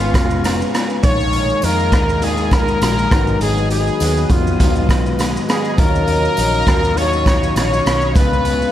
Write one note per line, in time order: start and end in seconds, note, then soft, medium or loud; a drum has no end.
0.00 0.14 G#1 medium
0.00 1.03 C#3 medium
0.00 1.04 G#3 medium
0.00 1.05 B3 medium
0.00 0.75 F4 medium
0.00 1.05 F4 medium
0.00 1.02 B4 medium
0.00 3.07 F5 medium
0.00 5.75 G#5 medium
0.00 1.02 C#6 medium
0.00 shaker medium
0.14 0.62 F1 medium
0.14 kick medium
0.14 cross-stick loud
0.14 closed hi-hat soft
0.14 tambourine medium
0.14 shaker soft
0.31 shaker medium
0.44 cross-stick medium
0.44 closed hi-hat medium
0.44 tambourine medium
0.44 shaker medium
0.62 shaker medium
0.74 cross-stick medium
0.74 closed hi-hat soft
0.74 tambourine soft
0.74 shaker medium
0.90 shaker soft
1.03 1.51 A#1 loud
1.03 1.63 A#2 medium
1.03 1.62 D#3 medium
1.03 1.63 G#3 medium
1.03 1.64 D#4 medium
1.03 1.64 F4 medium
1.03 3.10 A#4 medium
1.03 1.66 C#5 loud
1.03 8.12 D#6 loud
1.03 kick loud
1.03 closed hi-hat medium
1.03 tambourine soft
1.03 shaker medium
1.20 shaker soft
1.33 closed hi-hat medium
1.33 tambourine soft
1.33 shaker medium
1.49 shaker soft
1.62 1.92 F2 medium
1.62 2.22 D#3 medium
1.62 2.22 G#3 medium
1.62 2.23 D#4 medium
1.62 2.23 F4 medium
1.62 2.25 A#4 loud
1.62 closed hi-hat medium
1.62 tambourine medium
1.62 shaker medium
1.79 shaker soft
1.92 2.77 D#2 medium
1.92 kick medium
1.92 cross-stick medium
1.92 closed hi-hat soft
1.92 tambourine soft
1.92 shaker soft
2.09 shaker medium
2.22 3.11 A#2 medium
2.22 3.12 D#3 medium
2.22 3.12 G#3 loud
2.22 3.11 D#4 medium
2.22 3.10 F4 loud
2.22 2.55 G#4 loud
2.22 closed hi-hat medium
2.22 tambourine soft
2.22 shaker medium
2.38 shaker medium
2.51 3.41 A#4 loud
2.51 kick medium
2.51 cross-stick loud
2.51 closed hi-hat soft
2.51 tambourine medium
2.51 shaker soft
2.68 shaker medium
2.82 3.05 A#1 medium
2.82 cross-stick medium
2.82 closed hi-hat medium
2.82 tambourine medium
2.82 shaker medium
2.99 shaker medium
3.11 3.35 G#1 medium
3.11 4.01 G#2 medium
3.11 4.00 D#3 medium
3.11 4.01 F#3 medium
3.11 4.00 B3 medium
3.11 4.02 F#4 medium
3.11 5.76 B4 medium
3.11 8.11 D#5 medium
3.11 kick loud
3.11 cross-stick loud
3.11 closed hi-hat soft
3.11 tambourine medium
3.11 shaker soft
3.27 shaker soft
3.41 3.89 G#1 loud
3.41 3.69 G#4 loud
3.41 closed hi-hat medium
3.41 tambourine soft
3.41 shaker medium
3.58 shaker medium
3.70 4.32 G#4 loud
3.70 closed hi-hat medium
3.70 tambourine soft
3.70 shaker medium
3.87 shaker soft
4.00 4.24 D#2 medium
4.00 4.59 D#3 medium
4.00 4.60 F#3 medium
4.00 4.60 B3 medium
4.00 4.61 F#4 medium
4.00 closed hi-hat medium
4.00 tambourine medium
4.00 shaker medium
4.17 shaker soft
4.29 4.53 F2 medium
4.29 5.22 F4 medium
4.29 kick medium
4.29 closed hi-hat soft
4.29 shaker soft
4.47 shaker medium
4.58 4.89 D#2 loud
4.58 5.78 G#2 medium
4.58 5.77 D#3 medium
4.58 5.77 F#3 medium
4.58 5.78 B3 medium
4.58 kick medium
4.58 closed hi-hat medium
4.58 shaker medium
4.75 shaker medium
4.89 5.37 B1 loud
4.89 kick medium
4.89 cross-stick loud
4.89 closed hi-hat medium
4.89 tambourine medium
4.89 shaker soft
5.06 shaker medium
5.19 cross-stick medium
5.19 closed hi-hat medium
5.19 tambourine medium
5.19 shaker medium
5.37 shaker medium
5.49 5.80 G#4 medium
5.49 cross-stick loud
5.49 closed hi-hat soft
5.49 tambourine medium
5.49 shaker soft
5.65 shaker soft
5.77 6.26 D#2 loud
5.77 6.67 D#3 medium
5.77 6.67 F#3 medium
5.77 6.67 C#4 medium
5.77 6.65 F4 medium
5.77 6.99 A#4 loud
5.77 8.14 C#5 medium
5.77 8.72 F5 medium
5.77 kick loud
5.77 closed hi-hat medium
5.77 tambourine soft
5.77 shaker medium
5.95 shaker soft
6.07 closed hi-hat medium
6.07 tambourine soft
6.07 shaker medium
6.25 shaker soft
6.37 6.62 A#1 medium
6.37 closed hi-hat medium
6.37 tambourine medium
6.37 shaker medium
6.54 shaker soft
6.66 7.52 D#2 medium
6.66 6.96 F#3 soft
6.66 6.97 C#4 soft
6.66 6.96 F4 medium
6.66 kick medium
6.66 cross-stick medium
6.66 closed hi-hat soft
6.66 shaker soft
6.84 shaker medium
6.95 8.14 D#3 medium
6.95 8.16 F#3 medium
6.95 8.17 C#4 medium
6.95 7.56 C#5 loud
6.95 closed hi-hat medium
6.95 tambourine soft
6.95 shaker medium
6.99 8.18 F4 medium
7.13 shaker medium
7.26 kick medium
7.26 cross-stick medium
7.26 closed hi-hat soft
7.26 tambourine medium
7.26 shaker soft
7.43 shaker medium
7.56 7.80 A#1 medium
7.56 8.17 C#5 loud
7.56 cross-stick medium
7.56 closed hi-hat medium
7.56 tambourine medium
7.56 shaker medium
7.73 shaker medium
7.86 8.15 B1 medium
7.86 cross-stick loud
7.86 closed hi-hat soft
7.86 tambourine medium
7.86 shaker medium
8.02 shaker soft
8.14 8.63 C#2 loud
8.14 8.72 C#3 medium
8.14 8.72 G#3 medium
8.14 8.72 B3 medium
8.14 8.72 B4 medium
8.14 8.72 B4 loud
8.14 8.72 G#5 medium
8.14 8.72 C#6 loud
8.14 kick loud
8.14 closed hi-hat medium
8.14 tambourine soft
8.14 shaker medium
8.19 8.72 F4 medium
8.33 shaker medium
8.45 closed hi-hat medium
8.45 tambourine soft
8.45 shaker medium
8.62 shaker soft